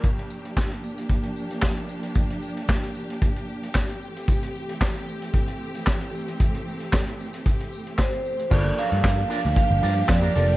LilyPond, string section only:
\new Staff \with { instrumentName = "String section" } { \time 4/4 \key g \dorian \tempo 4 = 113 << { g'1~ | g'1~ | g'1~ | g'1 |
g'1 | } \\ { <f bes d'>1~ | <f bes d'>2.~ <f bes d'>8 <e a c'>8~ | <e a c'>1~ | <e a c'>1 |
<f bes d'>1 | } >> }